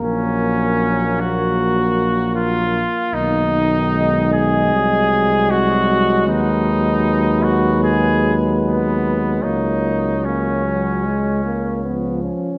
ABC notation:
X:1
M:4/4
L:1/8
Q:1/4=76
K:F#
V:1 name="Trumpet"
_B6- B z | d8 | B8 | c6- c z |]
V:2 name="Trumpet"
C3 F3 E2 | D3 G3 F2 | D3 F G z B,2 | D2 C4 z2 |]
V:3 name="French horn"
_B,8- | _B, z G,6- | G,8 | A,2 A, F, G, A, B, C |]
V:4 name="Trombone" clef=bass
F,6- F, z | D,4 F,4- | F,8- | F,4- F, z E,2 |]
V:5 name="Tuba" clef=bass
A,,,6- A,,, z | B,,,4 ^B,,,4 | D,,8 | C,,6- C,, z |]